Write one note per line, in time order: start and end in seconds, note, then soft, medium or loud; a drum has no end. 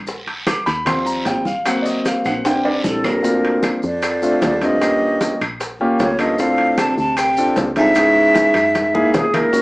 0.00 0.61 A#1 medium
0.07 high bongo medium
0.07 high conga soft
0.07 long guiro medium
0.07 maracas medium
0.27 high bongo soft
0.27 high conga soft
0.27 high timbale medium
0.47 0.66 D6 medium
0.47 high bongo medium
0.47 high conga loud
0.47 high timbale medium
0.47 short guiro medium
0.47 claves medium
0.47 maracas medium
0.66 1.22 D#2 medium
0.66 0.86 B5 loud
0.66 high bongo soft
0.66 high conga soft
0.66 high timbale medium
0.66 short guiro medium
0.66 maracas soft
0.85 1.42 F3 medium
0.85 1.43 G3 medium
0.85 1.43 C4 medium
0.85 1.06 C6 loud
0.85 high bongo medium
0.85 high conga soft
0.85 low conga medium
0.85 high timbale medium
0.85 long guiro medium
0.85 claves medium
0.85 maracas medium
1.06 1.25 A#5 medium
1.06 high conga soft
1.06 maracas medium
1.25 2.19 G#1 medium
1.25 1.46 G5 medium
1.25 high bongo soft
1.25 low bongo medium
1.25 high conga soft
1.25 high timbale medium
1.25 low timbale medium
1.25 short guiro medium
1.25 maracas medium
1.45 1.65 F5 medium
1.45 high bongo soft
1.45 high conga medium
1.45 short guiro medium
1.45 maracas soft
1.65 2.40 F#3 medium
1.65 2.41 A#3 medium
1.65 2.41 C4 medium
1.65 1.85 F#5 loud
1.65 high bongo medium
1.65 high conga soft
1.65 high timbale loud
1.65 long guiro medium
1.65 claves medium
1.65 maracas medium
1.82 1.85 D5 medium
1.82 2.05 D#5 medium
1.82 high conga soft
1.82 maracas medium
1.86 high bongo soft
2.05 2.25 F5 medium
2.05 high bongo medium
2.05 high conga medium
2.05 high timbale medium
2.05 short guiro medium
2.05 maracas medium
2.25 2.80 A#1 loud
2.25 2.44 F#5 medium
2.25 high bongo soft
2.25 high conga soft
2.25 high timbale medium
2.25 short guiro medium
2.25 claves medium
2.25 maracas soft
2.45 3.20 G3 medium
2.45 3.20 C4 medium
2.45 3.21 D4 medium
2.45 2.65 G5 loud
2.45 high bongo medium
2.45 high conga soft
2.45 high timbale medium
2.45 long guiro medium
2.45 maracas medium
2.65 2.76 D5 medium
2.65 high conga soft
2.65 high timbale medium
2.84 3.77 A#1 medium
2.84 3.07 C2 medium
2.84 3.07 A4 medium
2.84 high bongo soft
2.84 low bongo medium
2.84 high conga loud
2.84 short guiro medium
2.84 maracas medium
3.04 3.64 D2 medium
3.04 3.64 A#4 medium
3.04 high bongo soft
3.04 high conga medium
3.04 low timbale medium
3.04 short guiro medium
3.04 claves medium
3.04 maracas soft
3.23 3.78 A#3 medium
3.23 3.78 C4 medium
3.23 3.78 D4 medium
3.23 3.78 F4 medium
3.23 high bongo medium
3.23 high conga soft
3.23 maracas medium
3.43 high conga soft
3.43 high timbale medium
3.63 high bongo medium
3.63 high conga medium
3.63 high timbale medium
3.63 low timbale medium
3.63 claves medium
3.63 maracas medium
3.83 4.38 F2 medium
3.83 4.65 F2 medium
3.83 4.66 D5 loud
3.83 high conga soft
3.83 maracas soft
4.02 high bongo medium
4.02 high conga soft
4.02 high timbale medium
4.02 claves medium
4.02 maracas medium
4.22 4.50 A3 medium
4.22 4.50 C4 medium
4.22 4.50 D4 medium
4.22 4.50 F4 medium
4.22 high conga soft
4.22 maracas medium
4.42 5.35 D#2 medium
4.42 high bongo medium
4.42 low bongo medium
4.42 high conga medium
4.42 high timbale medium
4.42 low timbale medium
4.42 maracas medium
4.61 5.42 G2 medium
4.61 4.76 A3 medium
4.61 4.76 C4 medium
4.61 4.76 D4 medium
4.61 4.76 F4 medium
4.61 5.42 D#5 loud
4.61 high conga medium
4.61 high timbale medium
4.61 maracas soft
4.81 5.36 A#3 medium
4.81 5.36 C#4 medium
4.81 5.37 F4 medium
4.81 5.36 G4 medium
4.81 high bongo medium
4.81 high conga soft
4.81 high timbale medium
4.81 claves medium
4.81 maracas medium
5.02 high bongo soft
5.02 high conga soft
5.21 high bongo medium
5.21 high conga medium
5.21 high timbale medium
5.21 low timbale medium
5.21 maracas medium
5.40 5.96 A#1 medium
5.40 high bongo soft
5.40 high conga soft
5.40 high timbale medium
5.40 claves medium
5.40 maracas soft
5.60 high bongo medium
5.60 high conga soft
5.60 high timbale medium
5.60 maracas medium
5.80 6.08 A#3 loud
5.80 6.08 C#4 medium
5.80 6.08 F4 medium
5.80 6.08 G4 loud
5.80 high conga soft
5.99 6.93 D2 medium
5.99 6.20 F2 medium
5.99 6.21 C#5 medium
5.99 high bongo medium
5.99 low bongo medium
5.99 high conga medium
5.99 high timbale medium
5.99 low timbale medium
5.99 maracas medium
6.19 6.41 G2 medium
6.19 6.33 A#3 medium
6.19 6.33 C#4 medium
6.19 6.33 F4 medium
6.19 6.33 A4 medium
6.19 6.41 D#5 medium
6.19 high bongo soft
6.19 high timbale medium
6.19 claves medium
6.19 maracas soft
6.38 6.81 A2 medium
6.38 6.94 C4 medium
6.38 6.94 D4 medium
6.38 6.94 F4 medium
6.38 6.94 A4 medium
6.38 6.80 F5 loud
6.38 high bongo medium
6.38 high conga soft
6.38 maracas medium
6.58 high conga soft
6.58 high timbale medium
6.78 6.97 C3 medium
6.78 6.98 A5 loud
6.78 high bongo medium
6.78 high conga loud
6.78 high timbale medium
6.78 low timbale medium
6.78 claves medium
6.78 maracas medium
6.98 7.53 D2 medium
6.98 7.17 C3 medium
6.98 7.19 A5 loud
6.98 high conga soft
6.98 maracas soft
7.17 7.57 C3 medium
7.17 7.57 G5 loud
7.17 high bongo medium
7.17 high conga soft
7.17 high timbale medium
7.17 claves medium
7.17 maracas medium
7.37 7.65 C4 medium
7.37 7.65 D4 medium
7.37 7.65 F4 medium
7.37 7.65 A4 medium
7.37 high conga soft
7.37 maracas medium
7.56 8.49 C#2 medium
7.56 high bongo medium
7.56 low bongo medium
7.56 high conga medium
7.56 high timbale medium
7.56 low timbale medium
7.56 maracas medium
7.76 9.11 G#2 loud
7.76 7.90 C4 medium
7.76 7.90 D4 medium
7.76 7.90 F4 medium
7.76 7.90 A4 medium
7.76 9.11 E5 loud
7.76 high conga medium
7.76 high timbale medium
7.76 maracas soft
7.95 8.52 B3 medium
7.95 8.52 C#4 medium
7.95 8.52 E4 medium
7.95 8.52 G#4 medium
7.95 high bongo medium
7.95 high conga soft
7.95 high timbale medium
7.95 claves medium
7.95 maracas medium
8.16 high bongo soft
8.16 high conga soft
8.35 high bongo medium
8.35 high conga loud
8.35 high timbale medium
8.35 low timbale medium
8.35 maracas medium
8.54 9.10 F#2 medium
8.54 high conga soft
8.54 high timbale medium
8.54 claves medium
8.54 maracas soft
8.75 high bongo medium
8.75 high conga medium
8.75 high timbale medium
8.75 maracas medium
8.94 9.22 A#3 loud
8.94 9.22 D#4 medium
8.94 9.22 E4 medium
8.94 9.22 G#4 loud
8.94 high conga medium
9.14 9.62 B1 medium
9.14 9.35 C#2 medium
9.14 9.36 G#4 medium
9.14 high bongo medium
9.14 low bongo medium
9.14 low conga loud
9.14 high timbale medium
9.14 low timbale medium
9.14 maracas medium
9.34 9.62 C#2 medium
9.34 9.48 A#3 medium
9.34 9.48 D#4 medium
9.34 9.48 E4 medium
9.34 9.48 G#4 medium
9.34 9.62 A#4 medium
9.34 high bongo soft
9.34 low conga medium
9.34 high timbale loud
9.34 claves medium
9.34 maracas soft
9.53 9.62 A#3 medium
9.53 9.62 C#4 medium
9.53 9.62 D#4 medium
9.53 9.62 F#4 medium
9.53 high bongo medium
9.53 high conga soft
9.53 long guiro medium
9.53 maracas medium